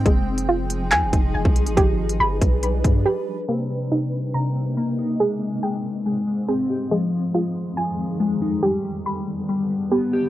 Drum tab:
HH |x--x--x-x-x---xx|x--x--x-x-x-----|----------------|----------------|
CP |--------x-------|----------------|----------------|----------------|
BD |o---------o--o--|o-----o---o-----|----------------|----------------|

HH |----------------|----------------|
CP |----------------|----------------|
BD |----------------|----------------|